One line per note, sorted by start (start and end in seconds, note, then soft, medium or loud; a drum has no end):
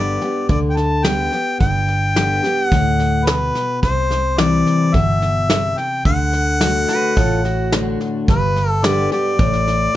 0.00 0.17 G1 medium
0.00 0.44 G2 medium
0.00 0.21 D3 soft
0.00 0.21 G3 medium
0.00 0.21 B3 medium
0.00 0.20 G4 medium
0.00 0.46 D5 medium
0.21 0.49 B3 soft
0.21 0.48 G4 medium
0.21 snare soft
0.49 1.28 D2 medium
0.49 1.03 D3 medium
0.49 0.59 D5 medium
0.49 kick loud
0.49 snare soft
0.70 0.78 G5 medium
0.77 1.06 A5 loud
0.77 snare soft
1.04 1.32 D3 soft
1.04 1.32 G3 medium
1.04 1.32 B3 medium
1.04 1.31 G4 medium
1.04 1.59 G5 loud
1.04 snare loud
1.04 hi-hat pedal medium
1.32 1.60 B3 soft
1.32 1.59 G4 medium
1.32 snare soft
1.60 2.39 G1 medium
1.60 2.66 G2 medium
1.60 2.65 G5 loud
1.60 kick medium
1.60 snare soft
1.88 snare soft
2.15 2.42 D3 medium
2.15 2.43 G3 medium
2.15 2.43 B3 medium
2.15 2.42 G4 medium
2.15 snare medium
2.15 hi-hat pedal medium
2.43 2.71 B3 soft
2.43 2.70 G4 medium
2.43 snare soft
2.65 3.28 F#5 loud
2.72 3.50 D2 medium
2.72 3.25 A2 medium
2.72 kick loud
2.72 snare soft
2.99 snare soft
3.26 3.81 B2 medium
3.26 3.82 B4 medium
3.26 snare loud
3.26 hi-hat pedal medium
3.55 snare soft
3.82 4.62 C2 loud
3.82 4.89 C3 medium
3.82 4.40 C5 medium
3.82 kick medium
3.82 snare soft
4.10 snare soft
4.38 4.92 E3 medium
4.38 4.92 G3 medium
4.38 4.92 C4 medium
4.38 4.93 E4 medium
4.38 4.96 D5 medium
4.38 snare loud
4.38 hi-hat pedal medium
4.66 snare soft
4.94 5.73 G1 medium
4.94 5.47 B2 medium
4.94 5.79 E5 medium
4.94 kick medium
4.94 snare soft
5.22 snare soft
5.50 6.03 C3 medium
5.50 snare loud
5.50 hi-hat pedal medium
5.78 6.05 G5 medium
5.78 snare soft
6.05 6.84 D2 medium
6.05 6.61 D3 medium
6.05 7.96 F#5 loud
6.05 kick loud
6.05 snare soft
6.33 snare soft
6.61 7.14 D3 medium
6.61 7.15 A3 medium
6.61 7.15 D4 medium
6.61 7.15 F#4 medium
6.61 snare medium
6.61 hi-hat pedal medium
6.88 7.17 F#4 medium
6.88 7.16 B4 medium
6.88 snare soft
7.17 7.95 A1 medium
7.17 8.22 A2 medium
7.17 7.43 F4 medium
7.17 7.44 A4 medium
7.17 kick loud
7.17 snare soft
7.45 7.99 F#4 medium
7.45 snare soft
7.72 8.25 D3 soft
7.72 8.26 A3 soft
7.72 8.26 D4 medium
7.72 8.26 F#4 medium
7.72 snare loud
7.72 hi-hat pedal medium
8.00 snare soft
8.28 9.07 G1 medium
8.28 9.34 G2 medium
8.28 8.70 B4 medium
8.28 kick loud
8.28 snare soft
8.56 snare soft
8.70 8.86 A4 medium
8.83 9.10 D3 medium
8.83 9.10 G3 medium
8.83 9.11 B3 loud
8.83 9.10 G4 loud
8.83 9.12 D5 medium
8.83 snare loud
8.83 hi-hat pedal medium
9.12 9.39 B3 medium
9.12 9.38 G4 medium
9.12 9.96 D5 loud
9.12 snare soft
9.39 9.86 A1 medium
9.39 9.92 A2 medium
9.39 kick loud
9.39 snare soft
9.53 snare soft
9.67 snare soft